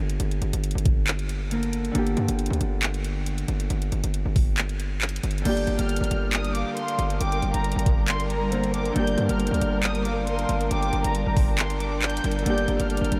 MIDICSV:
0, 0, Header, 1, 7, 480
1, 0, Start_track
1, 0, Key_signature, -2, "minor"
1, 0, Tempo, 437956
1, 217, Time_signature, 4, 2, 24, 8
1, 14465, End_track
2, 0, Start_track
2, 0, Title_t, "Violin section"
2, 0, Program_c, 0, 48
2, 5979, Note_on_c, 0, 91, 104
2, 6323, Note_off_c, 0, 91, 0
2, 6344, Note_on_c, 0, 89, 81
2, 6901, Note_off_c, 0, 89, 0
2, 6937, Note_on_c, 0, 87, 95
2, 7146, Note_off_c, 0, 87, 0
2, 7178, Note_on_c, 0, 86, 84
2, 7387, Note_off_c, 0, 86, 0
2, 7420, Note_on_c, 0, 84, 94
2, 7628, Note_off_c, 0, 84, 0
2, 7899, Note_on_c, 0, 86, 103
2, 8244, Note_off_c, 0, 86, 0
2, 8267, Note_on_c, 0, 82, 76
2, 8823, Note_off_c, 0, 82, 0
2, 8859, Note_on_c, 0, 84, 93
2, 9068, Note_off_c, 0, 84, 0
2, 9096, Note_on_c, 0, 82, 82
2, 9548, Note_off_c, 0, 82, 0
2, 9579, Note_on_c, 0, 86, 83
2, 9787, Note_off_c, 0, 86, 0
2, 9818, Note_on_c, 0, 91, 115
2, 10163, Note_off_c, 0, 91, 0
2, 10184, Note_on_c, 0, 89, 83
2, 10742, Note_off_c, 0, 89, 0
2, 10778, Note_on_c, 0, 87, 106
2, 10987, Note_off_c, 0, 87, 0
2, 11019, Note_on_c, 0, 86, 80
2, 11227, Note_off_c, 0, 86, 0
2, 11257, Note_on_c, 0, 84, 85
2, 11466, Note_off_c, 0, 84, 0
2, 11737, Note_on_c, 0, 86, 103
2, 12082, Note_off_c, 0, 86, 0
2, 12105, Note_on_c, 0, 82, 73
2, 12662, Note_off_c, 0, 82, 0
2, 12698, Note_on_c, 0, 84, 97
2, 12907, Note_off_c, 0, 84, 0
2, 12938, Note_on_c, 0, 86, 91
2, 13147, Note_off_c, 0, 86, 0
2, 13177, Note_on_c, 0, 91, 95
2, 13628, Note_off_c, 0, 91, 0
2, 13659, Note_on_c, 0, 91, 107
2, 14003, Note_off_c, 0, 91, 0
2, 14024, Note_on_c, 0, 89, 81
2, 14465, Note_off_c, 0, 89, 0
2, 14465, End_track
3, 0, Start_track
3, 0, Title_t, "Soft synth lead"
3, 0, Program_c, 1, 80
3, 5977, Note_on_c, 1, 74, 126
3, 6429, Note_off_c, 1, 74, 0
3, 7178, Note_on_c, 1, 77, 87
3, 7854, Note_off_c, 1, 77, 0
3, 7901, Note_on_c, 1, 79, 97
3, 8351, Note_off_c, 1, 79, 0
3, 9096, Note_on_c, 1, 70, 77
3, 9325, Note_off_c, 1, 70, 0
3, 9334, Note_on_c, 1, 72, 86
3, 9563, Note_off_c, 1, 72, 0
3, 9574, Note_on_c, 1, 70, 88
3, 9804, Note_off_c, 1, 70, 0
3, 9819, Note_on_c, 1, 74, 113
3, 10269, Note_off_c, 1, 74, 0
3, 11012, Note_on_c, 1, 77, 81
3, 11692, Note_off_c, 1, 77, 0
3, 11735, Note_on_c, 1, 79, 109
3, 12187, Note_off_c, 1, 79, 0
3, 13658, Note_on_c, 1, 74, 126
3, 14109, Note_off_c, 1, 74, 0
3, 14465, End_track
4, 0, Start_track
4, 0, Title_t, "String section"
4, 0, Program_c, 2, 48
4, 5977, Note_on_c, 2, 55, 80
4, 5977, Note_on_c, 2, 62, 76
4, 5978, Note_on_c, 2, 70, 91
4, 13614, Note_off_c, 2, 55, 0
4, 13614, Note_off_c, 2, 70, 0
4, 13657, Note_on_c, 2, 55, 83
4, 13657, Note_on_c, 2, 70, 94
4, 14465, Note_off_c, 2, 55, 0
4, 14465, Note_off_c, 2, 62, 0
4, 14465, Note_off_c, 2, 70, 0
4, 14465, End_track
5, 0, Start_track
5, 0, Title_t, "Harp"
5, 0, Program_c, 3, 46
5, 0, Note_on_c, 3, 50, 77
5, 0, Note_on_c, 3, 58, 64
5, 0, Note_on_c, 3, 67, 80
5, 1627, Note_off_c, 3, 50, 0
5, 1632, Note_off_c, 3, 67, 0
5, 1640, Note_on_c, 3, 50, 50
5, 1655, Note_off_c, 3, 58, 0
5, 1660, Note_on_c, 3, 58, 47
5, 1679, Note_on_c, 3, 70, 57
5, 2085, Note_off_c, 3, 50, 0
5, 2098, Note_on_c, 3, 50, 74
5, 2124, Note_off_c, 3, 58, 0
5, 2137, Note_on_c, 3, 58, 63
5, 2148, Note_off_c, 3, 70, 0
5, 2175, Note_on_c, 3, 67, 83
5, 5925, Note_off_c, 3, 50, 0
5, 5933, Note_off_c, 3, 58, 0
5, 5938, Note_on_c, 3, 50, 75
5, 5952, Note_off_c, 3, 67, 0
5, 5976, Note_on_c, 3, 58, 65
5, 6015, Note_on_c, 3, 67, 84
5, 9307, Note_off_c, 3, 50, 0
5, 9312, Note_off_c, 3, 67, 0
5, 9320, Note_on_c, 3, 50, 51
5, 9335, Note_off_c, 3, 58, 0
5, 9340, Note_on_c, 3, 58, 51
5, 9359, Note_on_c, 3, 70, 59
5, 9765, Note_off_c, 3, 50, 0
5, 9779, Note_on_c, 3, 50, 75
5, 9804, Note_off_c, 3, 58, 0
5, 9817, Note_on_c, 3, 58, 64
5, 9828, Note_off_c, 3, 70, 0
5, 9855, Note_on_c, 3, 67, 84
5, 13605, Note_off_c, 3, 50, 0
5, 13613, Note_off_c, 3, 58, 0
5, 13618, Note_on_c, 3, 50, 75
5, 13632, Note_off_c, 3, 67, 0
5, 13656, Note_on_c, 3, 58, 65
5, 13694, Note_on_c, 3, 67, 84
5, 14465, Note_off_c, 3, 50, 0
5, 14465, Note_off_c, 3, 58, 0
5, 14465, Note_off_c, 3, 67, 0
5, 14465, End_track
6, 0, Start_track
6, 0, Title_t, "808-style bass"
6, 0, Program_c, 4, 38
6, 0, Note_on_c, 4, 31, 104
6, 208, Note_off_c, 4, 31, 0
6, 217, Note_on_c, 4, 31, 112
6, 448, Note_off_c, 4, 31, 0
6, 457, Note_on_c, 4, 31, 103
6, 579, Note_off_c, 4, 31, 0
6, 584, Note_on_c, 4, 31, 100
6, 815, Note_off_c, 4, 31, 0
6, 825, Note_on_c, 4, 31, 104
6, 2094, Note_off_c, 4, 31, 0
6, 2137, Note_on_c, 4, 31, 113
6, 2368, Note_off_c, 4, 31, 0
6, 2377, Note_on_c, 4, 43, 99
6, 2499, Note_off_c, 4, 43, 0
6, 2504, Note_on_c, 4, 31, 99
6, 2735, Note_off_c, 4, 31, 0
6, 2744, Note_on_c, 4, 38, 101
6, 2850, Note_off_c, 4, 38, 0
6, 2857, Note_on_c, 4, 31, 108
6, 3779, Note_off_c, 4, 31, 0
6, 3817, Note_on_c, 4, 31, 104
6, 4048, Note_off_c, 4, 31, 0
6, 4058, Note_on_c, 4, 31, 114
6, 4288, Note_off_c, 4, 31, 0
6, 4298, Note_on_c, 4, 31, 106
6, 4420, Note_off_c, 4, 31, 0
6, 4425, Note_on_c, 4, 31, 101
6, 4655, Note_off_c, 4, 31, 0
6, 4664, Note_on_c, 4, 31, 105
6, 5694, Note_off_c, 4, 31, 0
6, 5737, Note_on_c, 4, 31, 102
6, 5968, Note_off_c, 4, 31, 0
6, 5977, Note_on_c, 4, 31, 115
6, 6208, Note_off_c, 4, 31, 0
6, 6217, Note_on_c, 4, 31, 106
6, 6339, Note_off_c, 4, 31, 0
6, 6344, Note_on_c, 4, 31, 104
6, 6575, Note_off_c, 4, 31, 0
6, 6584, Note_on_c, 4, 31, 106
6, 6693, Note_off_c, 4, 31, 0
6, 6697, Note_on_c, 4, 31, 111
6, 7280, Note_off_c, 4, 31, 0
6, 7657, Note_on_c, 4, 31, 109
6, 7888, Note_off_c, 4, 31, 0
6, 7898, Note_on_c, 4, 31, 113
6, 8128, Note_off_c, 4, 31, 0
6, 8138, Note_on_c, 4, 31, 103
6, 8260, Note_off_c, 4, 31, 0
6, 8265, Note_on_c, 4, 31, 103
6, 8495, Note_off_c, 4, 31, 0
6, 8505, Note_on_c, 4, 31, 106
6, 9774, Note_off_c, 4, 31, 0
6, 9817, Note_on_c, 4, 31, 114
6, 10048, Note_off_c, 4, 31, 0
6, 10057, Note_on_c, 4, 43, 108
6, 10180, Note_off_c, 4, 43, 0
6, 10185, Note_on_c, 4, 31, 102
6, 10415, Note_off_c, 4, 31, 0
6, 10425, Note_on_c, 4, 38, 106
6, 10533, Note_off_c, 4, 38, 0
6, 10538, Note_on_c, 4, 31, 110
6, 11459, Note_off_c, 4, 31, 0
6, 11497, Note_on_c, 4, 31, 106
6, 11728, Note_off_c, 4, 31, 0
6, 11737, Note_on_c, 4, 31, 108
6, 11968, Note_off_c, 4, 31, 0
6, 11977, Note_on_c, 4, 31, 102
6, 12099, Note_off_c, 4, 31, 0
6, 12104, Note_on_c, 4, 31, 99
6, 12335, Note_off_c, 4, 31, 0
6, 12344, Note_on_c, 4, 31, 105
6, 13374, Note_off_c, 4, 31, 0
6, 13418, Note_on_c, 4, 31, 104
6, 13648, Note_off_c, 4, 31, 0
6, 13658, Note_on_c, 4, 31, 108
6, 13888, Note_off_c, 4, 31, 0
6, 13897, Note_on_c, 4, 31, 109
6, 14019, Note_off_c, 4, 31, 0
6, 14025, Note_on_c, 4, 31, 103
6, 14255, Note_off_c, 4, 31, 0
6, 14265, Note_on_c, 4, 31, 104
6, 14373, Note_off_c, 4, 31, 0
6, 14377, Note_on_c, 4, 31, 109
6, 14465, Note_off_c, 4, 31, 0
6, 14465, End_track
7, 0, Start_track
7, 0, Title_t, "Drums"
7, 105, Note_on_c, 9, 42, 54
7, 214, Note_off_c, 9, 42, 0
7, 217, Note_on_c, 9, 42, 81
7, 327, Note_off_c, 9, 42, 0
7, 345, Note_on_c, 9, 42, 54
7, 454, Note_off_c, 9, 42, 0
7, 457, Note_on_c, 9, 42, 59
7, 567, Note_off_c, 9, 42, 0
7, 584, Note_on_c, 9, 42, 87
7, 694, Note_off_c, 9, 42, 0
7, 697, Note_on_c, 9, 42, 64
7, 777, Note_off_c, 9, 42, 0
7, 777, Note_on_c, 9, 42, 63
7, 857, Note_off_c, 9, 42, 0
7, 857, Note_on_c, 9, 42, 67
7, 937, Note_off_c, 9, 42, 0
7, 937, Note_on_c, 9, 36, 92
7, 937, Note_on_c, 9, 42, 77
7, 1047, Note_off_c, 9, 36, 0
7, 1047, Note_off_c, 9, 42, 0
7, 1177, Note_on_c, 9, 39, 125
7, 1177, Note_on_c, 9, 42, 89
7, 1287, Note_off_c, 9, 39, 0
7, 1287, Note_off_c, 9, 42, 0
7, 1304, Note_on_c, 9, 42, 57
7, 1414, Note_off_c, 9, 42, 0
7, 1417, Note_on_c, 9, 42, 63
7, 1527, Note_off_c, 9, 42, 0
7, 1657, Note_on_c, 9, 42, 68
7, 1767, Note_off_c, 9, 42, 0
7, 1784, Note_on_c, 9, 42, 62
7, 1894, Note_off_c, 9, 42, 0
7, 1897, Note_on_c, 9, 42, 73
7, 2007, Note_off_c, 9, 42, 0
7, 2024, Note_on_c, 9, 42, 56
7, 2134, Note_off_c, 9, 42, 0
7, 2137, Note_on_c, 9, 42, 82
7, 2246, Note_off_c, 9, 42, 0
7, 2264, Note_on_c, 9, 42, 53
7, 2374, Note_off_c, 9, 42, 0
7, 2377, Note_on_c, 9, 42, 59
7, 2487, Note_off_c, 9, 42, 0
7, 2504, Note_on_c, 9, 42, 91
7, 2614, Note_off_c, 9, 42, 0
7, 2617, Note_on_c, 9, 42, 65
7, 2697, Note_off_c, 9, 42, 0
7, 2697, Note_on_c, 9, 42, 64
7, 2777, Note_off_c, 9, 42, 0
7, 2777, Note_on_c, 9, 42, 67
7, 2857, Note_off_c, 9, 42, 0
7, 2857, Note_on_c, 9, 42, 77
7, 2967, Note_off_c, 9, 42, 0
7, 3097, Note_on_c, 9, 39, 127
7, 3097, Note_on_c, 9, 42, 90
7, 3207, Note_off_c, 9, 39, 0
7, 3207, Note_off_c, 9, 42, 0
7, 3224, Note_on_c, 9, 42, 55
7, 3334, Note_off_c, 9, 42, 0
7, 3337, Note_on_c, 9, 42, 66
7, 3447, Note_off_c, 9, 42, 0
7, 3577, Note_on_c, 9, 42, 67
7, 3687, Note_off_c, 9, 42, 0
7, 3704, Note_on_c, 9, 42, 62
7, 3814, Note_off_c, 9, 42, 0
7, 3817, Note_on_c, 9, 42, 73
7, 3927, Note_off_c, 9, 42, 0
7, 3944, Note_on_c, 9, 42, 57
7, 4054, Note_off_c, 9, 42, 0
7, 4057, Note_on_c, 9, 42, 79
7, 4167, Note_off_c, 9, 42, 0
7, 4185, Note_on_c, 9, 42, 54
7, 4294, Note_off_c, 9, 42, 0
7, 4297, Note_on_c, 9, 42, 58
7, 4407, Note_off_c, 9, 42, 0
7, 4424, Note_on_c, 9, 42, 88
7, 4534, Note_off_c, 9, 42, 0
7, 4537, Note_on_c, 9, 42, 77
7, 4646, Note_off_c, 9, 42, 0
7, 4777, Note_on_c, 9, 36, 88
7, 4777, Note_on_c, 9, 46, 77
7, 4886, Note_off_c, 9, 46, 0
7, 4887, Note_off_c, 9, 36, 0
7, 5017, Note_on_c, 9, 39, 120
7, 5017, Note_on_c, 9, 42, 89
7, 5127, Note_off_c, 9, 39, 0
7, 5127, Note_off_c, 9, 42, 0
7, 5144, Note_on_c, 9, 42, 55
7, 5254, Note_off_c, 9, 42, 0
7, 5257, Note_on_c, 9, 42, 66
7, 5366, Note_off_c, 9, 42, 0
7, 5496, Note_on_c, 9, 39, 102
7, 5497, Note_on_c, 9, 42, 42
7, 5577, Note_off_c, 9, 42, 0
7, 5577, Note_on_c, 9, 42, 57
7, 5606, Note_off_c, 9, 39, 0
7, 5657, Note_off_c, 9, 42, 0
7, 5657, Note_on_c, 9, 42, 68
7, 5737, Note_off_c, 9, 42, 0
7, 5737, Note_on_c, 9, 42, 74
7, 5817, Note_off_c, 9, 42, 0
7, 5817, Note_on_c, 9, 42, 61
7, 5897, Note_off_c, 9, 42, 0
7, 5897, Note_on_c, 9, 42, 45
7, 5977, Note_off_c, 9, 42, 0
7, 5977, Note_on_c, 9, 42, 83
7, 5977, Note_on_c, 9, 49, 108
7, 6087, Note_off_c, 9, 42, 0
7, 6087, Note_off_c, 9, 49, 0
7, 6104, Note_on_c, 9, 42, 56
7, 6214, Note_off_c, 9, 42, 0
7, 6217, Note_on_c, 9, 42, 59
7, 6326, Note_off_c, 9, 42, 0
7, 6344, Note_on_c, 9, 42, 91
7, 6454, Note_off_c, 9, 42, 0
7, 6457, Note_on_c, 9, 42, 66
7, 6537, Note_off_c, 9, 42, 0
7, 6537, Note_on_c, 9, 42, 66
7, 6617, Note_off_c, 9, 42, 0
7, 6617, Note_on_c, 9, 42, 66
7, 6697, Note_off_c, 9, 42, 0
7, 6697, Note_on_c, 9, 42, 81
7, 6807, Note_off_c, 9, 42, 0
7, 6937, Note_on_c, 9, 39, 126
7, 6937, Note_on_c, 9, 42, 93
7, 7047, Note_off_c, 9, 39, 0
7, 7047, Note_off_c, 9, 42, 0
7, 7064, Note_on_c, 9, 42, 55
7, 7174, Note_off_c, 9, 42, 0
7, 7177, Note_on_c, 9, 42, 69
7, 7287, Note_off_c, 9, 42, 0
7, 7417, Note_on_c, 9, 42, 69
7, 7527, Note_off_c, 9, 42, 0
7, 7544, Note_on_c, 9, 42, 65
7, 7654, Note_off_c, 9, 42, 0
7, 7658, Note_on_c, 9, 42, 74
7, 7767, Note_off_c, 9, 42, 0
7, 7785, Note_on_c, 9, 42, 58
7, 7894, Note_off_c, 9, 42, 0
7, 7897, Note_on_c, 9, 42, 86
7, 8007, Note_off_c, 9, 42, 0
7, 8025, Note_on_c, 9, 42, 55
7, 8134, Note_off_c, 9, 42, 0
7, 8137, Note_on_c, 9, 42, 60
7, 8247, Note_off_c, 9, 42, 0
7, 8265, Note_on_c, 9, 42, 92
7, 8374, Note_off_c, 9, 42, 0
7, 8377, Note_on_c, 9, 42, 66
7, 8458, Note_off_c, 9, 42, 0
7, 8458, Note_on_c, 9, 42, 64
7, 8538, Note_off_c, 9, 42, 0
7, 8538, Note_on_c, 9, 42, 66
7, 8617, Note_on_c, 9, 36, 92
7, 8618, Note_off_c, 9, 42, 0
7, 8618, Note_on_c, 9, 42, 81
7, 8727, Note_off_c, 9, 36, 0
7, 8727, Note_off_c, 9, 42, 0
7, 8858, Note_on_c, 9, 39, 122
7, 8858, Note_on_c, 9, 42, 96
7, 8967, Note_off_c, 9, 39, 0
7, 8967, Note_off_c, 9, 42, 0
7, 8985, Note_on_c, 9, 42, 56
7, 9095, Note_off_c, 9, 42, 0
7, 9098, Note_on_c, 9, 42, 69
7, 9208, Note_off_c, 9, 42, 0
7, 9338, Note_on_c, 9, 42, 69
7, 9447, Note_off_c, 9, 42, 0
7, 9465, Note_on_c, 9, 42, 61
7, 9574, Note_off_c, 9, 42, 0
7, 9578, Note_on_c, 9, 42, 76
7, 9687, Note_off_c, 9, 42, 0
7, 9705, Note_on_c, 9, 42, 59
7, 9814, Note_off_c, 9, 42, 0
7, 9818, Note_on_c, 9, 42, 83
7, 9927, Note_off_c, 9, 42, 0
7, 9945, Note_on_c, 9, 42, 58
7, 10055, Note_off_c, 9, 42, 0
7, 10058, Note_on_c, 9, 42, 58
7, 10167, Note_off_c, 9, 42, 0
7, 10185, Note_on_c, 9, 42, 90
7, 10294, Note_off_c, 9, 42, 0
7, 10298, Note_on_c, 9, 42, 65
7, 10378, Note_off_c, 9, 42, 0
7, 10378, Note_on_c, 9, 42, 66
7, 10458, Note_off_c, 9, 42, 0
7, 10458, Note_on_c, 9, 42, 67
7, 10538, Note_off_c, 9, 42, 0
7, 10538, Note_on_c, 9, 42, 76
7, 10647, Note_off_c, 9, 42, 0
7, 10777, Note_on_c, 9, 39, 127
7, 10777, Note_on_c, 9, 42, 95
7, 10887, Note_off_c, 9, 39, 0
7, 10887, Note_off_c, 9, 42, 0
7, 10905, Note_on_c, 9, 42, 58
7, 11014, Note_off_c, 9, 42, 0
7, 11017, Note_on_c, 9, 42, 68
7, 11127, Note_off_c, 9, 42, 0
7, 11258, Note_on_c, 9, 42, 71
7, 11367, Note_off_c, 9, 42, 0
7, 11385, Note_on_c, 9, 42, 63
7, 11494, Note_off_c, 9, 42, 0
7, 11497, Note_on_c, 9, 42, 75
7, 11607, Note_off_c, 9, 42, 0
7, 11625, Note_on_c, 9, 42, 59
7, 11734, Note_off_c, 9, 42, 0
7, 11738, Note_on_c, 9, 42, 82
7, 11847, Note_off_c, 9, 42, 0
7, 11865, Note_on_c, 9, 42, 57
7, 11974, Note_off_c, 9, 42, 0
7, 11978, Note_on_c, 9, 42, 60
7, 12087, Note_off_c, 9, 42, 0
7, 12105, Note_on_c, 9, 42, 92
7, 12214, Note_off_c, 9, 42, 0
7, 12217, Note_on_c, 9, 42, 76
7, 12327, Note_off_c, 9, 42, 0
7, 12457, Note_on_c, 9, 36, 90
7, 12457, Note_on_c, 9, 46, 80
7, 12567, Note_off_c, 9, 36, 0
7, 12567, Note_off_c, 9, 46, 0
7, 12697, Note_on_c, 9, 39, 127
7, 12697, Note_on_c, 9, 42, 94
7, 12807, Note_off_c, 9, 39, 0
7, 12807, Note_off_c, 9, 42, 0
7, 12824, Note_on_c, 9, 42, 57
7, 12934, Note_off_c, 9, 42, 0
7, 12937, Note_on_c, 9, 42, 69
7, 13047, Note_off_c, 9, 42, 0
7, 13177, Note_on_c, 9, 39, 105
7, 13177, Note_on_c, 9, 42, 44
7, 13257, Note_off_c, 9, 42, 0
7, 13257, Note_on_c, 9, 42, 57
7, 13286, Note_off_c, 9, 39, 0
7, 13337, Note_off_c, 9, 42, 0
7, 13337, Note_on_c, 9, 42, 68
7, 13417, Note_off_c, 9, 42, 0
7, 13417, Note_on_c, 9, 42, 76
7, 13497, Note_off_c, 9, 42, 0
7, 13497, Note_on_c, 9, 42, 60
7, 13578, Note_off_c, 9, 42, 0
7, 13578, Note_on_c, 9, 42, 45
7, 13657, Note_off_c, 9, 42, 0
7, 13657, Note_on_c, 9, 42, 86
7, 13767, Note_off_c, 9, 42, 0
7, 13785, Note_on_c, 9, 42, 58
7, 13894, Note_off_c, 9, 42, 0
7, 13898, Note_on_c, 9, 42, 61
7, 14007, Note_off_c, 9, 42, 0
7, 14025, Note_on_c, 9, 42, 89
7, 14134, Note_off_c, 9, 42, 0
7, 14138, Note_on_c, 9, 42, 66
7, 14218, Note_off_c, 9, 42, 0
7, 14218, Note_on_c, 9, 42, 65
7, 14297, Note_off_c, 9, 42, 0
7, 14297, Note_on_c, 9, 42, 66
7, 14378, Note_off_c, 9, 42, 0
7, 14378, Note_on_c, 9, 42, 78
7, 14465, Note_off_c, 9, 42, 0
7, 14465, End_track
0, 0, End_of_file